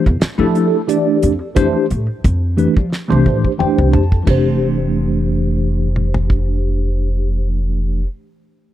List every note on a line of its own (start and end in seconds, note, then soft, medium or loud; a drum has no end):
0.05 0.19 E2 medium
0.05 0.13 G4 soft
0.05 0.13 A4 soft
0.05 kick medium
0.20 muted upright bass stroke soft
0.20 snare medium
0.20 closed hi-hat medium
0.38 0.66 F3 medium
0.38 0.80 A3 medium
0.38 0.80 D4 medium
0.38 0.80 E4 medium
0.38 0.81 G4 medium
0.38 0.81 A4 loud
0.55 closed hi-hat soft
0.87 1.31 E3 medium
0.87 1.31 A3 medium
0.87 1.31 D4 medium
0.87 1.31 G4 medium
0.87 1.32 D5 medium
0.87 closed hi-hat medium
1.22 1.38 F2 medium
1.22 closed hi-hat medium
1.40 1.48 G4 soft
1.40 1.49 D5 soft
1.55 1.71 F2 medium
1.55 1.84 E3 medium
1.55 1.85 A3 medium
1.55 1.85 D4 medium
1.55 1.85 G4 medium
1.55 1.85 C5 loud
1.55 kick medium
1.55 closed hi-hat medium
1.89 2.05 A2 medium
1.89 1.99 G4 soft
1.89 2.00 A4 soft
1.89 closed hi-hat medium
2.24 2.66 F2 medium
2.24 kick medium
2.24 closed hi-hat medium
2.57 2.73 E3 medium
2.57 2.73 A3 medium
2.57 2.73 D4 medium
2.57 2.73 G4 medium
2.57 2.74 B4 medium
2.57 closed hi-hat soft
2.76 2.89 F3 medium
2.76 2.83 G4 soft
2.76 kick medium
2.92 snare soft
3.08 3.23 C2 medium
3.08 3.50 E3 medium
3.08 3.51 A3 medium
3.08 3.51 D4 medium
3.08 3.51 G4 medium
3.08 3.51 C5 medium
3.08 high tom soft
3.26 3.41 A2 medium
3.26 kick soft
3.44 kick soft
3.58 4.01 E3 medium
3.58 4.02 A3 medium
3.58 4.02 D4 medium
3.58 4.02 G4 medium
3.58 4.02 C5 medium
3.58 3.91 G5 medium
3.58 muted upright bass stroke soft
3.58 mid tom medium
3.78 3.90 C2 medium
3.78 mid tom medium
3.93 4.21 F2 medium
3.93 4.25 A5 medium
3.93 floor tom medium
4.11 4.19 G4 soft
4.11 4.20 A4 soft
4.11 kick medium
4.23 8.03 F1 medium
4.23 7.99 E3 medium
4.23 8.01 A3 medium
4.23 8.03 D4 medium
4.23 kick medium
4.23 crash medium
4.29 8.05 G4 medium
4.29 8.06 C5 medium
5.96 mid tom soft
6.14 floor tom medium
6.30 kick medium